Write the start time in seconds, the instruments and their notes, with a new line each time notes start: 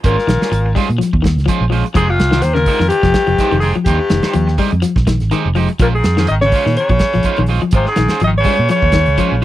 0.04 fingered electric bass G#1, baritone saxophone A#2, clean electric guitar G#3 C#4 F4 C5, alto saxophone A#4, kick, closed hi-hat
0.18 muted clean electric guitar stroke, snare
0.27 fingered electric bass A#1, clean electric guitar D#3, muted clean electric guitar stroke, snare, closed hi-hat
0.41 clean electric guitar C#4 F4, muted fingered electric bass stroke, snare, closed hi-hat
0.52 fingered electric bass G#1, muted clean electric guitar stroke, closed hi-hat
0.66 muted clean electric guitar stroke
0.75 clean electric guitar G3 G#3 C#4 F4 C5, kick, open hi-hat
0.90 fingered electric bass A#2, muted clean electric guitar stroke, closed hi-hat
0.98 clean electric guitar F3, muted fingered electric bass stroke, snare, closed hi-hat
1.13 fingered electric bass D#2, muted clean electric guitar stroke, kick
1.22 clean electric guitar D#3, muted clean electric guitar stroke, kick, snare, closed hi-hat
1.36 fingered electric bass C#2, snare, closed hi-hat
1.46 clean electric guitar F3 G#3 C#4 F4 C5, kick, closed hi-hat
1.61 fingered electric bass A#1
1.70 clean electric guitar F3 G#3 C#4 F4 C5, open hi-hat
1.85 muted clean electric guitar stroke, closed hi-hat
1.94 fingered electric bass F1, baritone saxophone G#2, clean electric guitar F3 G#3 G4 C5, alto saxophone G#4, muted clean electric guitar stroke, kick, closed hi-hat
2.08 baritone saxophone F2, alto saxophone F4, muted clean electric guitar stroke
2.19 fingered electric bass C2, muted clean electric guitar stroke, snare, closed hi-hat
2.31 clean electric guitar D#3 D#4 G4 C5, snare
2.42 fingered electric bass D#2, baritone saxophone C3, alto saxophone C5, muted clean electric guitar stroke, snare, closed hi-hat
2.54 baritone saxophone A#2, clean electric guitar C#3, alto saxophone A#4, muted clean electric guitar stroke, snare
2.66 clean electric guitar G#3 D#4 G4 C5, kick, open hi-hat
2.79 fingered electric bass F2, clean electric guitar D#3, muted clean electric guitar stroke, snare
2.89 baritone saxophone G2, alto saxophone G4, closed hi-hat
3.03 fingered electric bass F1, clean electric guitar F3, muted clean electric guitar stroke, kick, snare, closed hi-hat
3.14 muted clean electric guitar stroke, kick, snare, closed hi-hat
3.27 fingered electric bass F1, clean electric guitar F3, closed hi-hat
3.38 clean electric guitar G#3 D#4 G4 C5, muted fingered electric bass stroke, kick, snare, closed hi-hat
3.51 fingered electric bass F1, clean electric guitar D#3, closed hi-hat
3.61 baritone saxophone G#2, clean electric guitar G#3 G4 C5, alto saxophone G#4, open hi-hat
3.75 clean electric guitar F3, muted clean electric guitar stroke, muted fingered electric bass stroke, closed hi-hat
3.85 fingered electric bass D#2, baritone saxophone G2, clean electric guitar D#4 G4 C5, alto saxophone G4, muted clean electric guitar stroke, kick, snare, closed hi-hat
4.00 muted clean electric guitar stroke
4.10 fingered electric bass F1, clean electric guitar D#3, muted clean electric guitar stroke, snare, closed hi-hat
4.22 clean electric guitar D#4 G4 C5, muted fingered electric bass stroke, snare, closed hi-hat
4.33 fingered electric bass D#2, clean electric guitar F3, muted clean electric guitar stroke, closed hi-hat
4.47 muted clean electric guitar stroke, snare
4.58 clean electric guitar G3 G#3 D#4 G4 C5, kick, open hi-hat
4.71 fingered electric bass F2, muted clean electric guitar stroke, closed hi-hat
4.82 clean electric guitar F3, muted fingered electric bass stroke, snare, closed hi-hat
4.96 fingered electric bass A#1, muted clean electric guitar stroke, kick, snare
5.07 clean electric guitar D#3, muted clean electric guitar stroke, kick, snare, closed hi-hat
5.20 fingered electric bass G#1, snare, closed hi-hat
5.31 clean electric guitar D#3 G#3 D#4 G4 C5, snare, closed hi-hat
5.45 fingered electric bass F1
5.55 clean electric guitar F3 G#3 D#4 G4 C5, open hi-hat
5.68 muted clean electric guitar stroke, closed hi-hat
5.79 fingered electric bass A#1, baritone saxophone A#2, clean electric guitar F3 G#3 C#4 F4 C5, alto saxophone A#4, kick, closed hi-hat
5.95 baritone saxophone G#2, alto saxophone G#4, muted clean electric guitar stroke
6.04 fingered electric bass F2, muted clean electric guitar stroke, snare, closed hi-hat
6.17 clean electric guitar D#3 C#4 F4 C5, snare
6.27 fingered electric bass G#1, baritone saxophone D#3, alto saxophone D#5, muted clean electric guitar stroke, closed hi-hat
6.41 clean electric guitar C#3, baritone saxophone C#3, alto saxophone C#5, muted clean electric guitar stroke, snare
6.52 clean electric guitar G#3 C#4 F4 C5, kick, open hi-hat
6.66 fingered electric bass A#2, clean electric guitar D#3, muted clean electric guitar stroke, snare
6.77 baritone saxophone C#3, alto saxophone C#5, closed hi-hat
6.89 fingered electric bass A#1, clean electric guitar F3, muted clean electric guitar stroke, kick, closed hi-hat
6.99 muted clean electric guitar stroke, kick, snare, closed hi-hat
7.13 fingered electric bass A#1, clean electric guitar F3, snare, closed hi-hat
7.23 clean electric guitar G#3 C#4 F4 C5, muted fingered electric bass stroke, kick, closed hi-hat
7.36 fingered electric bass A#1, clean electric guitar D#3, closed hi-hat
7.46 clean electric guitar G#3 C#4 F4, open hi-hat
7.50 clean electric guitar C5
7.61 clean electric guitar F3, muted clean electric guitar stroke, muted fingered electric bass stroke, closed hi-hat
7.71 fingered electric bass G#1, clean electric guitar G#3 F4, alto saxophone C5, muted clean electric guitar stroke, kick, closed hi-hat
7.76 baritone saxophone C3
7.86 alto saxophone G#4, muted clean electric guitar stroke, snare
7.91 baritone saxophone G#2
7.96 fingered electric bass A#1, clean electric guitar D#3, muted clean electric guitar stroke, snare, closed hi-hat
8.08 clean electric guitar C#4 F4 C5, muted fingered electric bass stroke, snare, closed hi-hat
8.20 fingered electric bass G#1, clean electric guitar F3, muted clean electric guitar stroke, closed hi-hat
8.24 baritone saxophone D#3, alto saxophone D#5
8.34 muted clean electric guitar stroke
8.38 baritone saxophone C#3, alto saxophone C#5
8.44 clean electric guitar G3 G#3 C#4 F4 C5, kick, open hi-hat
8.57 fingered electric bass A#2, muted clean electric guitar stroke, closed hi-hat
8.69 clean electric guitar F3, alto saxophone C#5, muted fingered electric bass stroke, snare, closed hi-hat
8.75 baritone saxophone C#3
8.82 fingered electric bass D#2, muted clean electric guitar stroke, kick
8.92 clean electric guitar D#3, muted clean electric guitar stroke, kick, snare, closed hi-hat
9.06 fingered electric bass C#2, closed hi-hat
9.18 clean electric guitar F3 G#3 C#4 F4 C5, kick, closed hi-hat
9.32 fingered electric bass A#1